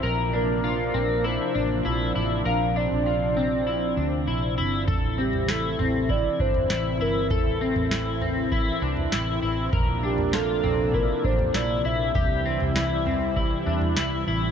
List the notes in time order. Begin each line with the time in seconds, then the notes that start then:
Already playing: C3
0.03 A#1 F3 A#3 D4 A#4
0.33 D4 A#4
0.64 F4
0.94 A#1 C4
1.24 E4 C5
1.55 A1 D4
1.85 A#1 E4
2.15 A1 E4
2.45 A#1 C4 A#4 F5
2.76 D4 D5
2.92 A#1
3.06 F4
3.37 C4
3.67 E4
3.97 D2 D4
4.27 A#1 E4
4.58 G1 E4
4.88 A1 E3 C4 E4 A4, kick, floor tom
5.18 C4 G4
5.33 floor tom
5.48 E4 A4, snare
5.79 A1 C4, floor tom
6.09 E4 D5, kick
6.40 G1 D4 C5, kick
6.54 floor tom
6.70 A1 E4, snare
7.00 G1 E4 A#4
7.30 A1 A4, kick, floor tom
7.61 C4
7.76 A1, floor tom
7.91 E4, snare
8.21 C4, floor tom
8.52 E4, kick
8.82 C2 D4
8.97 floor tom
9.12 A1 E4, snare
9.42 A1 E4
9.73 A#1 C3 F3 A#3 D4 A#4, kick, floor tom
10.03 D4 G4
10.18 floor tom
10.33 F4 A4, snare
10.63 A#1 C4, floor tom
10.94 E4 A#4, kick
11.24 A1 D4 C5, kick
11.39 floor tom
11.54 A#1 E4 D5, snare
11.85 A#1 E4 E5
12.15 C2 E3 G3 E4 G4, kick, floor tom
12.45 C4
12.60 C2, floor tom
12.76 E4, snare
13.06 C4, floor tom
13.36 E4, kick
13.66 E2 D4
13.81 floor tom
13.97 C2 E4, snare
14.27 A1 E4